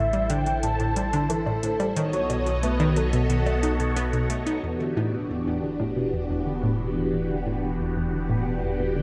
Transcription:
Already playing: sub bass A1, string machine E4 A4 C5, soft synth lead E5
0.13 synth arpeggio sound G3, closed hi-hat
0.29 synth arpeggio sound D3, soft synth lead G5, closed hi-hat
0.46 synth arpeggio sound E3, closed hi-hat
0.63 synth arpeggio sound A2, soft synth lead A5, closed hi-hat
0.80 synth arpeggio sound A2, closed hi-hat
0.96 synth arpeggio sound G3, closed hi-hat
1.13 synth arpeggio sound D3, closed hi-hat
1.29 synth arpeggio sound E3, soft synth lead A4, closed hi-hat
1.46 synth arpeggio sound A2, low woodblock
1.63 synth arpeggio sound A2, closed hi-hat
1.80 synth arpeggio sound G3, closed hi-hat, low woodblock
1.96 sub bass B1, synth arpeggio sound D#3, string machine B3 F#4 A4 C#5 D#5, soft synth lead C#5, closed hi-hat
2.13 synth arpeggio sound F#3, closed hi-hat
2.30 synth arpeggio sound B2, closed hi-hat, low woodblock
2.46 synth arpeggio sound B2, closed hi-hat
2.63 synth arpeggio sound A3, soft synth lead B4, closed hi-hat
2.80 synth arpeggio sound D#3, closed hi-hat, low woodblock
2.96 synth arpeggio sound F#3, soft synth lead A4, closed hi-hat
3.13 synth arpeggio sound B2, closed hi-hat
3.30 synth arpeggio sound B2, closed hi-hat
3.46 synth arpeggio sound A3, closed hi-hat, low woodblock
3.63 synth arpeggio sound D#4, closed hi-hat
3.80 synth arpeggio sound B2, closed hi-hat
3.96 synth arpeggio sound B3, closed hi-hat
4.13 synth arpeggio sound B2, closed hi-hat
4.30 synth arpeggio sound A3, closed hi-hat
4.46 synth arpeggio sound D#4, closed hi-hat
4.63 sub bass E1, synth arpeggio sound E2, string machine E3 B3 D4 F#4 G4
4.80 synth arpeggio sound D3
4.97 synth arpeggio sound A2
5.13 synth arpeggio sound B2
5.30 synth arpeggio sound E2
5.46 synth arpeggio sound E2
5.63 synth arpeggio sound D3
5.80 synth arpeggio sound A2
5.96 synth arpeggio sound B2
6.13 synth arpeggio sound E2
6.30 synth arpeggio sound E2
6.47 synth arpeggio sound D3
6.63 synth arpeggio sound A2
6.80 synth arpeggio sound B2
6.96 synth arpeggio sound E2
7.13 synth arpeggio sound E2
7.30 synth arpeggio sound D3
7.46 synth arpeggio sound A2
7.63 synth arpeggio sound B2
7.80 synth arpeggio sound E2
7.96 synth arpeggio sound E2
8.13 synth arpeggio sound D3
8.30 synth arpeggio sound A2
8.46 synth arpeggio sound B2
8.63 synth arpeggio sound E2
8.80 synth arpeggio sound E2
8.96 synth arpeggio sound D3

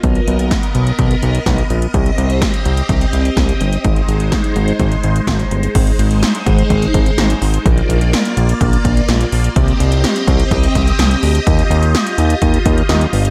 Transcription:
0.03 analog synth bass B1, string machine B3 A#4 D#5, kick, closed hi-hat
0.15 closed hi-hat
0.27 analog synth bass B1, closed hi-hat
0.39 closed hi-hat
0.51 kick, snare, closed hi-hat
0.63 closed hi-hat
0.75 analog synth bass B1, closed hi-hat
0.87 closed hi-hat
0.99 analog synth bass B1, kick, closed hi-hat
1.11 closed hi-hat
1.23 analog synth bass B1, closed hi-hat
1.35 closed hi-hat
1.46 analog synth bass B1, kick, snare, closed hi-hat
1.58 closed hi-hat
1.70 analog synth bass A#1, closed hi-hat
1.82 closed hi-hat
1.94 analog synth bass C2, string machine C4 G4, kick, closed hi-hat
2.06 closed hi-hat
2.18 analog synth bass C2, closed hi-hat
2.30 closed hi-hat
2.42 kick, snare, closed hi-hat
2.54 closed hi-hat
2.66 analog synth bass C2, closed hi-hat
2.77 closed hi-hat
2.89 analog synth bass C2, kick, closed hi-hat
3.01 closed hi-hat
3.13 analog synth bass C2, closed hi-hat
3.25 closed hi-hat
3.37 analog synth bass C2, kick, snare, closed hi-hat
3.49 closed hi-hat
3.61 analog synth bass G1, closed hi-hat
3.73 closed hi-hat
3.84 analog synth bass G#1, string machine G#3 D#4 C5, kick, closed hi-hat
3.96 closed hi-hat
4.08 analog synth bass G#1, closed hi-hat
4.20 closed hi-hat
4.32 kick, snare, closed hi-hat
4.44 closed hi-hat
4.56 analog synth bass G#1, closed hi-hat
4.68 closed hi-hat
4.79 analog synth bass G#1, kick, closed hi-hat
4.92 closed hi-hat
5.04 analog synth bass G#1, closed hi-hat
5.16 closed hi-hat
5.27 analog synth bass G#1, kick, snare, closed hi-hat
5.40 closed hi-hat
5.51 analog synth bass G1, closed hi-hat
5.63 closed hi-hat
5.75 analog synth bass G#1, string machine G#3 D#4 C5, kick, closed hi-hat, crash
5.87 closed hi-hat
5.99 analog synth bass G#1, closed hi-hat
6.11 closed hi-hat
6.23 snare, closed hi-hat
6.35 closed hi-hat
6.46 analog synth bass G#1, kick, closed hi-hat
6.58 closed hi-hat
6.70 analog synth bass G#1, kick, closed hi-hat
6.82 closed hi-hat
6.94 analog synth bass G#1, kick, closed hi-hat
7.06 closed hi-hat
7.18 analog synth bass G#1, snare, closed hi-hat
7.30 closed hi-hat
7.42 analog synth bass G#1, open hi-hat
7.54 closed hi-hat
7.66 analog synth bass A#1, string machine A#3 F4 D5, kick, closed hi-hat
7.78 closed hi-hat
7.89 analog synth bass A#1, closed hi-hat
8.01 closed hi-hat
8.13 snare, closed hi-hat
8.25 closed hi-hat
8.37 analog synth bass A#1, closed hi-hat
8.49 closed hi-hat
8.61 analog synth bass A#1, kick, closed hi-hat
8.73 closed hi-hat
8.85 analog synth bass A#1, kick, closed hi-hat
8.97 closed hi-hat
9.09 analog synth bass A#1, snare, closed hi-hat
9.21 closed hi-hat
9.32 analog synth bass A#1, open hi-hat
9.44 closed hi-hat
9.56 analog synth bass C2, string machine C4 G4 D#5, kick, closed hi-hat
9.68 closed hi-hat
9.80 analog synth bass C2, closed hi-hat
9.92 closed hi-hat
10.04 snare, closed hi-hat
10.16 closed hi-hat
10.27 analog synth bass C2, kick, closed hi-hat
10.40 closed hi-hat
10.51 analog synth bass C2, kick, closed hi-hat
10.64 closed hi-hat
10.75 analog synth bass C2, kick, closed hi-hat
10.88 closed hi-hat
10.99 analog synth bass C2, snare, closed hi-hat
11.11 closed hi-hat
11.23 analog synth bass D2, open hi-hat
11.35 closed hi-hat
11.47 analog synth bass D#2, string machine F4, kick, closed hi-hat
11.59 closed hi-hat
11.70 analog synth bass D#2, closed hi-hat
11.83 closed hi-hat
11.95 snare, closed hi-hat
12.07 closed hi-hat
12.18 analog synth bass D#2, closed hi-hat
12.30 closed hi-hat
12.42 analog synth bass D#2, kick, closed hi-hat
12.54 closed hi-hat
12.66 analog synth bass D#2, kick, closed hi-hat
12.78 closed hi-hat
12.89 analog synth bass D#2, snare, closed hi-hat
13.01 closed hi-hat
13.13 analog synth bass G1, open hi-hat
13.25 closed hi-hat

